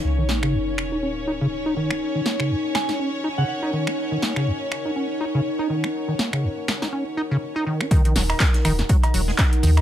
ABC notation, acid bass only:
X:1
M:4/4
L:1/16
Q:"Swing 16ths" 1/4=122
K:Ebm
V:1 name="Acid bass" clef=bass
z E, B, D, E,, z2 E D z E D, z E E, E | z E, B, D, E,, z2 E D z E D, z E E, E | z E, B, D, E,, z2 E D z E D, z E E, E | z E, B, D, E,, z2 E D z E D, z E E, E |
E, E, G, z D z E, E,, G, z G, A, D z E, z |]